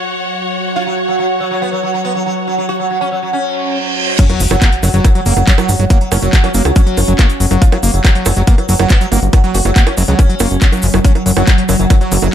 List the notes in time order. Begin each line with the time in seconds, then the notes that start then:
Already playing: F#3 F#4 C#5 F#5
0.76 F4
0.87 F#3
1.08 F#3
1.19 F#3
1.40 F#3
1.51 F#3
1.62 B3
1.72 F#3
1.83 F#3
1.94 F#3
2.05 B3
2.15 F#3
2.26 F#3
2.47 F#3
2.58 F#3
2.69 F#4
2.80 F#3
2.90 F#3
3.01 C#4
3.12 F#3
3.22 F#3
3.33 C#4, reverse cymbal
4.19 F#3 C#4, kick, closed hi-hat, crash, sub drop, shaker
4.30 F#3, closed hi-hat, high bongo
4.40 F#1 F3, open hi-hat, shaker
4.51 F#1 F#3, closed hi-hat, high bongo, shaker
4.62 F#3 A#3, kick, clap, closed hi-hat, shaker
4.72 closed hi-hat
4.83 F#1 F#3, open hi-hat, high bongo, shaker
4.94 F#1 F#3, closed hi-hat, shaker
5.05 F3 F#3, kick, closed hi-hat, high bongo, shaker
5.15 F#3, closed hi-hat
5.26 F#1 F#3 A#3, open hi-hat, shaker
5.37 F#1 F#3, high bongo, shaker
5.47 F#3, kick, clap, closed hi-hat, shaker
5.58 F#3, closed hi-hat, high bongo, shaker
5.69 G1 F3 F#3, open hi-hat, shaker
5.80 G1 F#3, closed hi-hat, shaker
5.90 F#3 A#3, kick, closed hi-hat, high bongo, shaker
6.01 F#3, closed hi-hat
6.12 F#1 F#3 C#4, open hi-hat, high bongo, shaker
6.22 F#1 F#3, closed hi-hat, shaker
6.33 F3 F#3, kick, clap, closed hi-hat, shaker
6.44 F#3 C#4, closed hi-hat, high bongo
6.54 F#1 F#3 A#3, open hi-hat, shaker
6.65 C#2 F#3, closed hi-hat, high bongo, shaker
6.76 F#3 C#4, kick, closed hi-hat, shaker
6.87 F#3, closed hi-hat
6.97 F#1 F3, open hi-hat, high bongo, shaker
7.08 F#1 F#3, closed hi-hat, shaker
7.19 A#3, kick, clap, closed hi-hat, high bongo, shaker
7.30 closed hi-hat, shaker
7.40 F#1 F#3, open hi-hat, shaker
7.51 F#1 F#3, closed hi-hat, high bongo, shaker
7.62 F3 F4, kick, closed hi-hat, shaker
7.72 F#3, closed hi-hat, high bongo
7.83 F#1 A#3, open hi-hat, shaker
7.94 F#1 F#3, closed hi-hat, shaker
8.05 F#3, kick, clap, closed hi-hat, high bongo, shaker
8.15 F#3, closed hi-hat
8.26 F#1 F3 F#3, open hi-hat, high bongo, shaker
8.36 F#1 F#3, closed hi-hat, shaker
8.47 A#3 B3, kick, closed hi-hat, shaker
8.58 F#3, closed hi-hat, high bongo
8.69 F#1 F#3, open hi-hat, shaker
8.79 F#1 F#3, closed hi-hat, high bongo, shaker
8.89 F3 B3, kick, clap, closed hi-hat, shaker
9.01 F#3, closed hi-hat, shaker
9.12 G1 F#3 A#3, open hi-hat, high bongo, shaker
9.22 G1, closed hi-hat, shaker
9.33 F#3, kick, closed hi-hat, high bongo, shaker
9.44 F#3, closed hi-hat
9.55 F#1 F3 F#4, open hi-hat, shaker
9.65 F#1 F#3, closed hi-hat, high bongo, shaker
9.76 F#3 A#3, kick, clap, closed hi-hat, shaker
9.87 C#4, closed hi-hat, high bongo
9.97 F#1 F#3, open hi-hat, shaker
10.07 C#2 F#3, closed hi-hat, shaker
10.19 F3 C#4, kick, closed hi-hat, high bongo, shaker
10.30 F#3, closed hi-hat
10.39 F#1 A#3, open hi-hat, high bongo, shaker
10.51 F#1, closed hi-hat, shaker
10.61 F#3, kick, clap, closed hi-hat, shaker
10.72 F#3, closed hi-hat, high bongo, shaker
10.82 F#1 F3, open hi-hat, shaker
10.94 F#1 F#3, closed hi-hat, high bongo, shaker
11.05 F#3 C#4, kick, closed hi-hat, shaker
11.15 F#3, closed hi-hat, high bongo
11.26 F#1 F#3, open hi-hat, shaker
11.37 F#1 F#3, closed hi-hat, high bongo, shaker
11.47 F3 F#3, kick, clap, closed hi-hat, shaker
11.58 F#3, closed hi-hat
11.69 F#1 F#3, open hi-hat, high bongo, shaker
11.80 F#1 F#3, closed hi-hat, shaker
11.90 F#3, kick, closed hi-hat, high bongo, shaker
12.01 F#3, closed hi-hat
12.12 F#1 F3 F#3, open hi-hat, shaker
12.22 F#1 F#3, closed hi-hat, high bongo, shaker